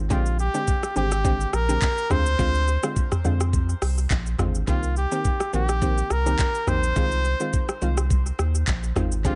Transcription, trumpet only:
0.12 0.38 F4 medium
0.40 0.93 G4 loud
0.97 1.56 G4 loud
1.54 2.13 A#4 loud
2.11 3.25 C5 loud
4.69 4.95 F4 medium
4.97 5.50 G4 medium
5.55 6.13 G4 loud
6.11 6.70 A#4 loud
6.69 7.82 C5 loud
9.26 9.35 F4 medium

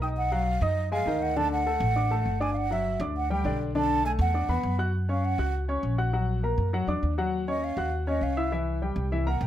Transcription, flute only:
0.03 0.09 G5 medium
0.17 0.34 F#5 loud
0.32 0.64 F5 loud
0.62 0.92 D#5 medium
0.92 1.24 F5 loud
1.22 1.38 F#5 loud
1.37 1.51 A5 loud
1.52 2.43 F#5 loud
2.42 2.52 G#5 medium
2.53 2.58 F5 medium
2.53 2.74 F#5 loud
2.73 3.01 E5 medium
3.17 3.30 F#5 medium
3.32 3.59 G5 medium
3.76 4.03 A5 loud
4.06 4.12 G#5 loud
4.21 4.76 F#5 medium
5.10 5.27 F5 medium
5.25 5.54 F#5 loud
7.49 7.65 D#5 medium
7.64 7.93 F5 medium
8.08 8.24 D#5 medium
8.23 8.52 F5 medium
9.27 9.44 F#5 medium
9.43 9.47 G5 medium

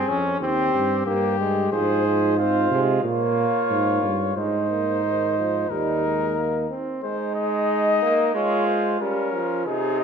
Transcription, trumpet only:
0.00 0.24 G#4 medium
0.41 1.05 G4 medium
1.06 1.71 G4 medium
1.72 2.37 C5 medium
2.39 2.81 C5 medium
3.04 4.33 C#5 medium
4.37 5.71 C5 medium
5.70 6.70 A#4 medium
7.03 7.34 C5 medium
7.36 8.33 D#5 medium
8.35 8.67 C#5 medium
8.67 9.00 C5 medium
9.00 9.65 A#4 medium
9.66 10.01 G#4 medium
9.99 10.04 D#5 loud

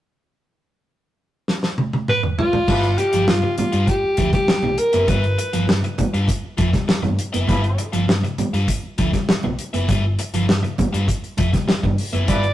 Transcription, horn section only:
2.69 2.88 F3 medium
2.69 2.88 B3 loud
2.69 2.88 E4 medium
2.69 2.88 B4 loud
7.49 7.87 F3 loud
7.49 7.87 B3 medium
7.49 7.87 E4 loud
7.49 7.87 B4 loud
12.27 12.47 F3 medium
12.27 12.47 B3 medium
12.27 12.47 E4 loud
12.27 12.47 B4 loud

